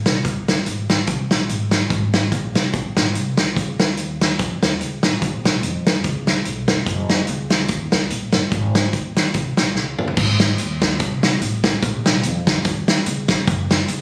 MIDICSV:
0, 0, Header, 1, 3, 480
1, 0, Start_track
1, 0, Key_signature, -5, "major"
1, 0, Tempo, 413223
1, 294, Time_signature, 4, 2, 24, 8
1, 16279, End_track
2, 0, Start_track
2, 0, Title_t, "Upright bass"
2, 0, Program_c, 0, 32
2, 83, Note_on_c, 0, 36, 83
2, 263, Note_off_c, 0, 36, 0
2, 293, Note_on_c, 0, 37, 95
2, 702, Note_off_c, 0, 37, 0
2, 774, Note_on_c, 0, 32, 90
2, 1183, Note_off_c, 0, 32, 0
2, 1252, Note_on_c, 0, 36, 88
2, 1482, Note_off_c, 0, 36, 0
2, 1519, Note_on_c, 0, 34, 82
2, 1702, Note_off_c, 0, 34, 0
2, 1741, Note_on_c, 0, 32, 82
2, 2148, Note_off_c, 0, 32, 0
2, 2212, Note_on_c, 0, 32, 90
2, 2622, Note_off_c, 0, 32, 0
2, 2695, Note_on_c, 0, 34, 95
2, 2924, Note_off_c, 0, 34, 0
2, 2967, Note_on_c, 0, 36, 81
2, 3147, Note_off_c, 0, 36, 0
2, 3183, Note_on_c, 0, 34, 82
2, 3409, Note_off_c, 0, 34, 0
2, 3448, Note_on_c, 0, 32, 79
2, 3627, Note_off_c, 0, 32, 0
2, 3665, Note_on_c, 0, 36, 83
2, 3890, Note_off_c, 0, 36, 0
2, 3936, Note_on_c, 0, 36, 76
2, 4111, Note_off_c, 0, 36, 0
2, 4141, Note_on_c, 0, 37, 94
2, 4627, Note_off_c, 0, 37, 0
2, 4627, Note_on_c, 0, 39, 84
2, 5030, Note_off_c, 0, 39, 0
2, 5108, Note_on_c, 0, 41, 89
2, 5330, Note_off_c, 0, 41, 0
2, 5371, Note_on_c, 0, 39, 77
2, 5548, Note_off_c, 0, 39, 0
2, 5584, Note_on_c, 0, 37, 78
2, 5808, Note_off_c, 0, 37, 0
2, 5850, Note_on_c, 0, 33, 75
2, 6027, Note_off_c, 0, 33, 0
2, 6065, Note_on_c, 0, 34, 97
2, 6539, Note_off_c, 0, 34, 0
2, 6539, Note_on_c, 0, 41, 84
2, 6945, Note_off_c, 0, 41, 0
2, 7024, Note_on_c, 0, 37, 96
2, 7427, Note_off_c, 0, 37, 0
2, 7505, Note_on_c, 0, 35, 80
2, 7728, Note_off_c, 0, 35, 0
2, 7768, Note_on_c, 0, 29, 76
2, 7946, Note_off_c, 0, 29, 0
2, 7978, Note_on_c, 0, 30, 100
2, 8384, Note_off_c, 0, 30, 0
2, 8461, Note_on_c, 0, 37, 96
2, 8935, Note_off_c, 0, 37, 0
2, 8935, Note_on_c, 0, 39, 94
2, 9163, Note_off_c, 0, 39, 0
2, 9207, Note_on_c, 0, 37, 79
2, 9385, Note_off_c, 0, 37, 0
2, 9414, Note_on_c, 0, 34, 85
2, 9642, Note_off_c, 0, 34, 0
2, 9683, Note_on_c, 0, 31, 75
2, 9863, Note_off_c, 0, 31, 0
2, 9895, Note_on_c, 0, 32, 93
2, 10304, Note_off_c, 0, 32, 0
2, 10378, Note_on_c, 0, 39, 88
2, 10786, Note_off_c, 0, 39, 0
2, 10858, Note_on_c, 0, 36, 91
2, 11086, Note_off_c, 0, 36, 0
2, 11128, Note_on_c, 0, 34, 77
2, 11338, Note_off_c, 0, 34, 0
2, 11338, Note_on_c, 0, 37, 80
2, 11566, Note_off_c, 0, 37, 0
2, 11606, Note_on_c, 0, 31, 73
2, 11786, Note_off_c, 0, 31, 0
2, 11819, Note_on_c, 0, 32, 99
2, 12227, Note_off_c, 0, 32, 0
2, 12305, Note_on_c, 0, 39, 100
2, 12710, Note_off_c, 0, 39, 0
2, 12783, Note_on_c, 0, 36, 91
2, 13189, Note_off_c, 0, 36, 0
2, 13258, Note_on_c, 0, 33, 94
2, 13666, Note_off_c, 0, 33, 0
2, 13741, Note_on_c, 0, 34, 101
2, 14221, Note_off_c, 0, 34, 0
2, 14221, Note_on_c, 0, 41, 99
2, 14627, Note_off_c, 0, 41, 0
2, 14701, Note_on_c, 0, 39, 93
2, 15106, Note_off_c, 0, 39, 0
2, 15176, Note_on_c, 0, 37, 98
2, 15583, Note_off_c, 0, 37, 0
2, 15653, Note_on_c, 0, 30, 108
2, 16060, Note_off_c, 0, 30, 0
2, 16133, Note_on_c, 0, 37, 103
2, 16279, Note_off_c, 0, 37, 0
2, 16279, End_track
3, 0, Start_track
3, 0, Title_t, "Drums"
3, 68, Note_on_c, 9, 38, 110
3, 70, Note_on_c, 9, 42, 79
3, 184, Note_off_c, 9, 38, 0
3, 186, Note_off_c, 9, 42, 0
3, 288, Note_on_c, 9, 42, 92
3, 289, Note_on_c, 9, 36, 108
3, 404, Note_off_c, 9, 42, 0
3, 405, Note_off_c, 9, 36, 0
3, 562, Note_on_c, 9, 38, 105
3, 563, Note_on_c, 9, 42, 69
3, 678, Note_off_c, 9, 38, 0
3, 679, Note_off_c, 9, 42, 0
3, 768, Note_on_c, 9, 42, 80
3, 884, Note_off_c, 9, 42, 0
3, 1039, Note_on_c, 9, 42, 61
3, 1042, Note_on_c, 9, 38, 103
3, 1155, Note_off_c, 9, 42, 0
3, 1158, Note_off_c, 9, 38, 0
3, 1245, Note_on_c, 9, 42, 93
3, 1251, Note_on_c, 9, 36, 103
3, 1361, Note_off_c, 9, 42, 0
3, 1367, Note_off_c, 9, 36, 0
3, 1519, Note_on_c, 9, 38, 100
3, 1525, Note_on_c, 9, 42, 70
3, 1636, Note_off_c, 9, 38, 0
3, 1641, Note_off_c, 9, 42, 0
3, 1734, Note_on_c, 9, 42, 73
3, 1850, Note_off_c, 9, 42, 0
3, 1991, Note_on_c, 9, 38, 104
3, 1993, Note_on_c, 9, 42, 72
3, 2107, Note_off_c, 9, 38, 0
3, 2109, Note_off_c, 9, 42, 0
3, 2210, Note_on_c, 9, 42, 84
3, 2211, Note_on_c, 9, 36, 110
3, 2326, Note_off_c, 9, 42, 0
3, 2327, Note_off_c, 9, 36, 0
3, 2482, Note_on_c, 9, 38, 109
3, 2483, Note_on_c, 9, 42, 72
3, 2598, Note_off_c, 9, 38, 0
3, 2599, Note_off_c, 9, 42, 0
3, 2694, Note_on_c, 9, 36, 89
3, 2694, Note_on_c, 9, 42, 85
3, 2810, Note_off_c, 9, 36, 0
3, 2810, Note_off_c, 9, 42, 0
3, 2965, Note_on_c, 9, 42, 62
3, 2968, Note_on_c, 9, 38, 98
3, 3081, Note_off_c, 9, 42, 0
3, 3084, Note_off_c, 9, 38, 0
3, 3175, Note_on_c, 9, 42, 89
3, 3179, Note_on_c, 9, 36, 105
3, 3291, Note_off_c, 9, 42, 0
3, 3295, Note_off_c, 9, 36, 0
3, 3446, Note_on_c, 9, 38, 110
3, 3451, Note_on_c, 9, 42, 67
3, 3562, Note_off_c, 9, 38, 0
3, 3567, Note_off_c, 9, 42, 0
3, 3661, Note_on_c, 9, 42, 72
3, 3777, Note_off_c, 9, 42, 0
3, 3920, Note_on_c, 9, 38, 104
3, 3922, Note_on_c, 9, 42, 73
3, 4036, Note_off_c, 9, 38, 0
3, 4038, Note_off_c, 9, 42, 0
3, 4141, Note_on_c, 9, 36, 106
3, 4144, Note_on_c, 9, 42, 92
3, 4257, Note_off_c, 9, 36, 0
3, 4260, Note_off_c, 9, 42, 0
3, 4409, Note_on_c, 9, 38, 111
3, 4410, Note_on_c, 9, 42, 68
3, 4525, Note_off_c, 9, 38, 0
3, 4526, Note_off_c, 9, 42, 0
3, 4614, Note_on_c, 9, 42, 81
3, 4730, Note_off_c, 9, 42, 0
3, 4893, Note_on_c, 9, 42, 63
3, 4896, Note_on_c, 9, 38, 104
3, 5009, Note_off_c, 9, 42, 0
3, 5012, Note_off_c, 9, 38, 0
3, 5099, Note_on_c, 9, 42, 91
3, 5106, Note_on_c, 9, 36, 106
3, 5215, Note_off_c, 9, 42, 0
3, 5222, Note_off_c, 9, 36, 0
3, 5373, Note_on_c, 9, 38, 103
3, 5378, Note_on_c, 9, 42, 76
3, 5489, Note_off_c, 9, 38, 0
3, 5495, Note_off_c, 9, 42, 0
3, 5584, Note_on_c, 9, 42, 78
3, 5700, Note_off_c, 9, 42, 0
3, 5843, Note_on_c, 9, 38, 110
3, 5845, Note_on_c, 9, 42, 75
3, 5959, Note_off_c, 9, 38, 0
3, 5961, Note_off_c, 9, 42, 0
3, 6062, Note_on_c, 9, 42, 94
3, 6063, Note_on_c, 9, 36, 102
3, 6178, Note_off_c, 9, 42, 0
3, 6179, Note_off_c, 9, 36, 0
3, 6336, Note_on_c, 9, 38, 111
3, 6337, Note_on_c, 9, 42, 69
3, 6452, Note_off_c, 9, 38, 0
3, 6453, Note_off_c, 9, 42, 0
3, 6540, Note_on_c, 9, 42, 83
3, 6656, Note_off_c, 9, 42, 0
3, 6812, Note_on_c, 9, 42, 60
3, 6814, Note_on_c, 9, 38, 109
3, 6928, Note_off_c, 9, 42, 0
3, 6930, Note_off_c, 9, 38, 0
3, 7014, Note_on_c, 9, 42, 91
3, 7021, Note_on_c, 9, 36, 107
3, 7130, Note_off_c, 9, 42, 0
3, 7137, Note_off_c, 9, 36, 0
3, 7285, Note_on_c, 9, 38, 100
3, 7290, Note_on_c, 9, 42, 70
3, 7401, Note_off_c, 9, 38, 0
3, 7407, Note_off_c, 9, 42, 0
3, 7494, Note_on_c, 9, 42, 73
3, 7611, Note_off_c, 9, 42, 0
3, 7758, Note_on_c, 9, 38, 107
3, 7760, Note_on_c, 9, 42, 75
3, 7874, Note_off_c, 9, 38, 0
3, 7876, Note_off_c, 9, 42, 0
3, 7973, Note_on_c, 9, 42, 92
3, 7975, Note_on_c, 9, 36, 106
3, 8089, Note_off_c, 9, 42, 0
3, 8091, Note_off_c, 9, 36, 0
3, 8242, Note_on_c, 9, 38, 101
3, 8243, Note_on_c, 9, 42, 66
3, 8359, Note_off_c, 9, 38, 0
3, 8359, Note_off_c, 9, 42, 0
3, 8444, Note_on_c, 9, 42, 76
3, 8560, Note_off_c, 9, 42, 0
3, 8715, Note_on_c, 9, 42, 65
3, 8718, Note_on_c, 9, 38, 107
3, 8831, Note_off_c, 9, 42, 0
3, 8834, Note_off_c, 9, 38, 0
3, 8924, Note_on_c, 9, 42, 90
3, 8935, Note_on_c, 9, 36, 98
3, 9040, Note_off_c, 9, 42, 0
3, 9051, Note_off_c, 9, 36, 0
3, 9200, Note_on_c, 9, 38, 101
3, 9205, Note_on_c, 9, 42, 73
3, 9316, Note_off_c, 9, 38, 0
3, 9321, Note_off_c, 9, 42, 0
3, 9413, Note_on_c, 9, 42, 73
3, 9529, Note_off_c, 9, 42, 0
3, 9670, Note_on_c, 9, 38, 104
3, 9672, Note_on_c, 9, 42, 80
3, 9787, Note_off_c, 9, 38, 0
3, 9789, Note_off_c, 9, 42, 0
3, 9894, Note_on_c, 9, 36, 107
3, 9894, Note_on_c, 9, 42, 91
3, 10010, Note_off_c, 9, 36, 0
3, 10011, Note_off_c, 9, 42, 0
3, 10165, Note_on_c, 9, 38, 111
3, 10166, Note_on_c, 9, 42, 68
3, 10281, Note_off_c, 9, 38, 0
3, 10282, Note_off_c, 9, 42, 0
3, 10373, Note_on_c, 9, 42, 76
3, 10375, Note_on_c, 9, 36, 84
3, 10490, Note_off_c, 9, 42, 0
3, 10492, Note_off_c, 9, 36, 0
3, 10645, Note_on_c, 9, 42, 60
3, 10647, Note_on_c, 9, 38, 105
3, 10761, Note_off_c, 9, 42, 0
3, 10764, Note_off_c, 9, 38, 0
3, 10849, Note_on_c, 9, 42, 88
3, 10856, Note_on_c, 9, 36, 104
3, 10965, Note_off_c, 9, 42, 0
3, 10973, Note_off_c, 9, 36, 0
3, 11121, Note_on_c, 9, 38, 102
3, 11126, Note_on_c, 9, 42, 68
3, 11237, Note_off_c, 9, 38, 0
3, 11242, Note_off_c, 9, 42, 0
3, 11331, Note_on_c, 9, 38, 48
3, 11447, Note_off_c, 9, 38, 0
3, 11599, Note_on_c, 9, 45, 82
3, 11705, Note_on_c, 9, 43, 79
3, 11715, Note_off_c, 9, 45, 0
3, 11812, Note_on_c, 9, 49, 96
3, 11815, Note_on_c, 9, 36, 120
3, 11821, Note_off_c, 9, 43, 0
3, 11928, Note_off_c, 9, 49, 0
3, 11931, Note_off_c, 9, 36, 0
3, 12079, Note_on_c, 9, 38, 116
3, 12079, Note_on_c, 9, 42, 79
3, 12195, Note_off_c, 9, 38, 0
3, 12195, Note_off_c, 9, 42, 0
3, 12290, Note_on_c, 9, 42, 89
3, 12406, Note_off_c, 9, 42, 0
3, 12562, Note_on_c, 9, 42, 72
3, 12564, Note_on_c, 9, 38, 114
3, 12567, Note_on_c, 9, 36, 83
3, 12678, Note_off_c, 9, 42, 0
3, 12680, Note_off_c, 9, 38, 0
3, 12684, Note_off_c, 9, 36, 0
3, 12773, Note_on_c, 9, 42, 103
3, 12779, Note_on_c, 9, 36, 122
3, 12889, Note_off_c, 9, 42, 0
3, 12896, Note_off_c, 9, 36, 0
3, 13046, Note_on_c, 9, 38, 119
3, 13051, Note_on_c, 9, 42, 82
3, 13162, Note_off_c, 9, 38, 0
3, 13167, Note_off_c, 9, 42, 0
3, 13261, Note_on_c, 9, 42, 86
3, 13377, Note_off_c, 9, 42, 0
3, 13518, Note_on_c, 9, 38, 113
3, 13520, Note_on_c, 9, 36, 99
3, 13520, Note_on_c, 9, 42, 84
3, 13634, Note_off_c, 9, 38, 0
3, 13636, Note_off_c, 9, 36, 0
3, 13636, Note_off_c, 9, 42, 0
3, 13737, Note_on_c, 9, 36, 126
3, 13737, Note_on_c, 9, 42, 100
3, 13853, Note_off_c, 9, 36, 0
3, 13853, Note_off_c, 9, 42, 0
3, 14006, Note_on_c, 9, 38, 123
3, 14007, Note_on_c, 9, 42, 73
3, 14123, Note_off_c, 9, 38, 0
3, 14123, Note_off_c, 9, 42, 0
3, 14210, Note_on_c, 9, 42, 93
3, 14326, Note_off_c, 9, 42, 0
3, 14483, Note_on_c, 9, 42, 66
3, 14485, Note_on_c, 9, 36, 84
3, 14486, Note_on_c, 9, 38, 110
3, 14599, Note_off_c, 9, 42, 0
3, 14602, Note_off_c, 9, 36, 0
3, 14602, Note_off_c, 9, 38, 0
3, 14689, Note_on_c, 9, 42, 96
3, 14696, Note_on_c, 9, 36, 117
3, 14805, Note_off_c, 9, 42, 0
3, 14812, Note_off_c, 9, 36, 0
3, 14962, Note_on_c, 9, 38, 120
3, 14967, Note_on_c, 9, 42, 82
3, 15078, Note_off_c, 9, 38, 0
3, 15083, Note_off_c, 9, 42, 0
3, 15172, Note_on_c, 9, 42, 85
3, 15288, Note_off_c, 9, 42, 0
3, 15430, Note_on_c, 9, 38, 119
3, 15432, Note_on_c, 9, 42, 84
3, 15435, Note_on_c, 9, 36, 101
3, 15547, Note_off_c, 9, 38, 0
3, 15549, Note_off_c, 9, 42, 0
3, 15552, Note_off_c, 9, 36, 0
3, 15653, Note_on_c, 9, 36, 125
3, 15655, Note_on_c, 9, 42, 101
3, 15769, Note_off_c, 9, 36, 0
3, 15771, Note_off_c, 9, 42, 0
3, 15922, Note_on_c, 9, 38, 123
3, 15923, Note_on_c, 9, 42, 77
3, 16038, Note_off_c, 9, 38, 0
3, 16039, Note_off_c, 9, 42, 0
3, 16126, Note_on_c, 9, 42, 85
3, 16243, Note_off_c, 9, 42, 0
3, 16279, End_track
0, 0, End_of_file